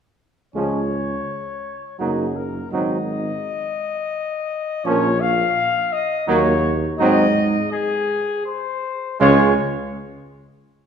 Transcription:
0.55 1.15 C#2 soft
0.55 0.81 F3 soft
0.55 0.81 G#3 soft
0.55 0.81 C#4 soft
0.55 1.95 C#5 medium
1.99 2.60 F#1 soft
1.99 2.25 F#3 soft
1.99 2.26 A#3 soft
1.99 2.26 D#4 soft
1.99 2.38 G#4 soft
2.36 2.72 A#4 soft
2.72 3.32 G#1 medium
2.72 2.98 F#3 soft
2.72 2.98 C4 medium
2.72 2.98 D#4 soft
2.72 4.87 D#5 medium
4.85 5.45 A#1 medium
4.85 5.11 F3 medium
4.85 5.11 A#3 medium
4.85 5.11 C#4 medium
4.85 5.22 C#5 medium
5.20 5.94 F5 loud
5.92 6.27 D#5 medium
6.27 6.88 D#2 medium
6.27 6.53 F#3 medium
6.27 6.54 A#3 medium
6.27 6.53 D#4 medium
6.27 6.73 C#5 medium
6.99 7.60 G#2 medium
6.99 7.25 F#3 medium
6.99 7.26 C4 medium
6.99 7.25 D#4 medium
6.99 7.68 D#5 loud
7.72 8.44 G#4 medium
8.46 9.19 C5 medium
9.20 9.53 C#2 medium
9.20 9.53 G#3 medium
9.20 9.54 C#4 medium
9.20 9.53 F4 medium
9.20 9.54 C#5 loud

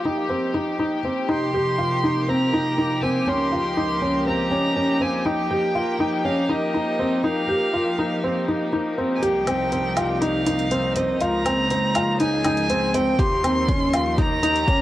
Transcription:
0.00 14.82 F3 medium
0.00 14.82 A#3 medium
0.00 14.82 D#4 medium
0.00 11.21 G4 medium
0.05 0.25 D#4 medium
0.29 0.49 C4 medium
0.54 0.74 D#4 medium
0.79 0.99 D#4 medium
1.04 1.24 C4 medium
1.28 3.27 C3 medium
1.28 1.48 D#4 medium
1.28 2.30 C6 loud
1.54 1.74 G4 medium
1.78 1.98 F4 medium
2.04 2.23 D#4 medium
2.28 2.48 C4 medium
2.28 3.05 A#5 medium
2.53 2.73 D#4 medium
2.78 2.97 D#4 medium
3.03 3.22 C4 medium
3.03 3.29 G#5 medium
3.26 5.25 C#2 medium
3.26 3.47 C#4 medium
3.26 4.26 C6 loud
3.52 3.72 F4 medium
3.77 3.97 D#4 medium
4.02 4.21 C#4 medium
4.27 4.46 C4 medium
4.27 5.03 A#5 loud
4.51 4.71 C#4 medium
4.76 4.96 C#4 medium
5.01 5.20 C4 medium
5.01 5.27 G#5 medium
5.26 5.45 D#4 medium
5.26 6.27 G5 medium
5.51 5.70 G4 medium
5.75 5.95 F4 medium
6.00 6.20 D#4 medium
6.25 6.44 C#4 medium
6.25 6.52 F5 medium
6.49 6.69 D#4 medium
6.49 7.26 D#5 medium
6.74 6.94 D#4 medium
6.99 7.19 C4 medium
7.24 7.44 D#4 medium
7.24 8.73 F5 medium
7.49 7.68 G4 medium
7.74 7.93 F4 medium
7.99 8.18 D#4 medium
8.24 8.43 C4 medium
8.48 8.68 D#4 medium
8.73 8.93 D#4 medium
8.98 9.17 C4 medium
9.15 9.24 G#5 medium
9.22 11.18 C2 medium
9.22 9.42 G4 medium
9.22 10.15 G5 medium
9.22 closed hi-hat soft
9.47 9.67 C4 medium
9.47 closed hi-hat soft
9.47 low woodblock medium
9.72 9.92 C4 medium
9.72 closed hi-hat soft
9.97 10.16 F4 medium
9.97 closed hi-hat medium
9.97 low woodblock medium
10.15 10.24 G5 medium
10.22 10.41 D#4 medium
10.22 10.98 F5 medium
10.22 closed hi-hat soft
10.46 10.66 D#4 medium
10.46 closed hi-hat medium
10.59 closed hi-hat soft
10.71 10.91 C4 medium
10.71 closed hi-hat soft
10.96 11.16 C4 medium
10.96 11.23 D#5 medium
10.96 closed hi-hat medium
11.21 13.17 C#2 medium
11.21 11.41 F4 medium
11.21 12.20 A#5 loud
11.21 closed hi-hat soft
11.46 11.65 C4 medium
11.46 closed hi-hat medium
11.46 low woodblock medium
11.70 11.90 C4 medium
11.70 closed hi-hat soft
11.95 12.15 F4 medium
11.95 closed hi-hat medium
11.95 low woodblock medium
12.10 13.19 G#4 medium
12.20 12.40 D#4 medium
12.20 12.96 G#5 loud
12.20 closed hi-hat soft
12.44 12.65 D#4 medium
12.44 closed hi-hat medium
12.44 low woodblock medium
12.57 closed hi-hat soft
12.70 12.89 C4 medium
12.70 closed hi-hat soft
12.94 13.14 C4 medium
12.94 13.21 G5 loud
12.94 closed hi-hat medium
13.19 14.82 D#2 medium
13.19 13.39 G4 loud
13.19 14.20 C6 loud
13.19 kick loud
13.19 closed hi-hat soft
13.44 13.64 C4 medium
13.44 closed hi-hat medium
13.44 low woodblock medium
13.68 13.89 C#4 medium
13.68 kick loud
13.68 closed hi-hat soft
13.93 14.13 F4 medium
13.93 closed hi-hat medium
13.93 low woodblock medium
14.09 14.82 G4 medium
14.18 14.38 D#4 medium
14.18 14.82 A#5 loud
14.18 kick loud
14.18 closed hi-hat soft
14.43 14.63 D#4 medium
14.43 closed hi-hat medium
14.56 closed hi-hat soft
14.67 14.82 C#4 medium
14.67 kick loud
14.67 closed hi-hat soft

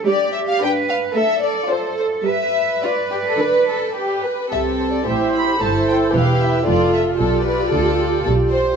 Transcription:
0.07 0.50 G3 medium
0.07 0.60 G4 medium
0.07 0.33 D5 medium
0.33 0.39 E5 medium
0.48 0.62 F5 medium
0.61 1.02 D4 soft
0.61 1.15 B4 medium
0.61 1.02 B4 soft
0.61 0.71 G5 medium
0.89 0.97 F5 medium
1.14 1.58 A3 medium
1.14 1.68 A4 soft
1.14 1.42 E5 medium
1.42 1.69 D5 medium
1.68 2.11 F4 soft
1.68 2.24 A4 soft
1.68 2.11 C5 soft
1.68 1.97 C5 medium
1.98 2.06 C5 medium
2.24 2.71 G3 medium
2.24 4.25 B4 soft
2.24 2.82 E5 medium
2.83 2.91 F4 soft
2.83 3.97 D5 soft
3.12 3.18 G4 soft
3.26 3.40 A4 soft
3.39 3.84 D3 soft
3.39 3.69 B4 soft
3.69 3.97 A4 soft
3.97 4.25 G4 soft
4.25 4.53 B4 soft
4.52 5.05 C2 soft
4.52 5.04 C3 soft
4.52 5.03 C4 soft
4.52 5.04 G4 soft
4.52 5.03 A4 soft
4.52 4.60 E5 medium
4.79 4.93 C5 soft
4.92 5.07 D5 soft
5.07 5.58 A1 soft
5.07 5.57 A2 soft
5.07 5.61 E4 soft
5.07 5.61 G4 soft
5.07 5.60 C5 soft
5.07 5.34 E5 soft
5.35 5.61 B5 medium
5.60 6.11 G1 soft
5.60 6.11 G2 soft
5.60 6.66 E4 soft
5.60 6.13 A4 soft
5.60 6.14 C5 soft
5.60 5.88 A5 soft
5.89 5.97 G5 medium
6.13 6.64 E1 soft
6.13 6.64 E2 soft
6.13 6.68 G4 soft
6.13 6.67 B4 soft
6.13 6.41 F5 soft
6.42 6.68 E5 soft
6.67 7.17 F1 soft
6.67 7.17 F2 soft
6.67 7.19 F4 soft
6.67 8.76 F4 soft
6.67 7.19 A4 soft
6.67 6.94 D5 medium
6.93 7.01 E5 medium
7.20 7.70 B1 soft
7.20 7.70 B2 soft
7.20 8.76 G4 soft
7.20 7.46 A4 soft
7.20 8.51 D5 medium
7.45 7.72 B4 soft
7.72 8.23 D2 soft
7.72 8.23 D3 soft
7.72 8.24 A4 soft
8.25 8.76 B1 medium
8.25 8.76 B2 soft
8.25 8.33 A4 soft
8.51 8.76 C5 medium

